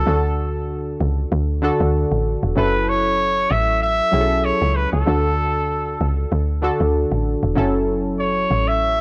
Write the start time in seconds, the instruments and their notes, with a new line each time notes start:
Already playing: trumpet A4
0.06 log drum bass D2, synth keys D3 D4 F#4 A4
1.01 log drum bass C#2
1.32 log drum bass D2
1.62 synth keys D3 D4 F#4 A4
1.80 log drum bass D2
2.12 log drum bass A1
2.43 log drum bass E1
2.55 log drum bass F#1, synth keys F#3 C#4 E4 A4, trumpet B4
2.89 trumpet C#5
3.51 log drum bass A1, trumpet E5
3.82 trumpet E5
4.12 log drum bass B1, synth keys F#3 C#4 E4 G#4
4.21 synth keys A4
4.45 trumpet C#5
4.62 log drum bass C#2
4.76 trumpet B4
4.93 log drum bass C#2, trumpet A4
5.06 log drum bass D2, synth keys D3 D4 F#4 A4
6.01 log drum bass C#2
6.32 log drum bass D2
6.62 synth keys D3 D4 F#4 A4
6.80 log drum bass D2
7.12 log drum bass A1
7.43 log drum bass E1
7.55 log drum bass F#1, synth keys F#3 C#4 E4 A4
8.20 trumpet C#5
8.51 log drum bass A1
8.68 trumpet E5